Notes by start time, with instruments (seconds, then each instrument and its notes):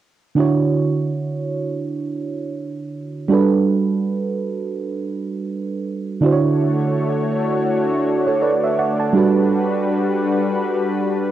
0.35 fm electric piano D3 D4 E4
0.39 fm electric piano F#4 C#5
3.28 fm electric piano G3 D4 F#4 A4
3.34 fm electric piano B4
6.21 fm electric piano D3 D4 E4 F#4, analog synth pad A3 D4 F#4 C#5
6.26 fm electric piano C5
6.32 fm electric piano C#5
8.27 fm electric piano A4 C#5
8.42 fm electric piano B4 D5
8.64 fm electric piano C#5 E5
8.79 fm electric piano D5 F#5
9.00 fm electric piano F#5 A5
9.13 fm electric piano G3 D4 F#4 A4, analog synth pad G3 F#4 B4
9.18 fm electric piano B4